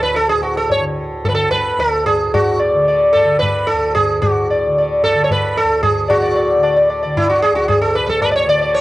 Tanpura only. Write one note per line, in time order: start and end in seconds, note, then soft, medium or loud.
0.00 1.76 D2 medium
0.00 0.32 A2 medium
0.00 0.79 D3 medium
0.33 2.26 A2 medium
0.79 1.29 D3 medium
1.29 2.74 D3 medium
1.77 3.71 D2 medium
2.26 4.17 A2 medium
2.74 3.23 D3 medium
3.23 4.67 D3 medium
3.71 5.62 D2 medium
4.18 6.09 A2 medium
4.67 5.14 D3 medium
5.14 6.58 D3 medium
5.62 7.51 D2 medium
6.10 7.97 A2 medium
6.58 7.05 D3 medium
7.05 8.45 D3 medium
7.51 8.81 D2 medium
7.98 8.81 A2 medium
8.45 8.81 D3 medium